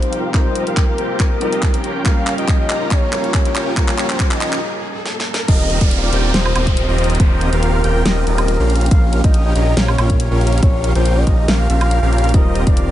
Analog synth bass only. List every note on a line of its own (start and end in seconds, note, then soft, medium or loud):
5.48 5.79 D#1 loud
5.81 6.11 D#1 loud
6.13 6.32 D#1 loud
6.34 6.54 D#1 loud
6.56 6.86 D#1 loud
6.88 7.18 D#1 loud
7.20 7.50 D#1 loud
7.53 7.82 D#1 medium
7.84 8.04 D#1 loud
8.06 8.25 D#1 loud
8.27 8.58 D#1 medium
8.60 8.89 A#1 loud
8.91 9.22 A#1 loud
9.24 9.54 A#1 loud
9.56 9.75 A#1 loud
9.77 9.96 A#1 loud
9.98 10.29 A#1 medium
10.31 10.61 A#1 loud
10.63 10.93 A#1 loud
10.95 11.25 A#1 loud
11.27 11.46 A#1 medium
11.48 11.68 A#1 loud
11.70 12.00 A#1 loud
12.03 12.36 A#1 loud
12.34 12.65 D#1 loud
12.67 12.91 D#1 loud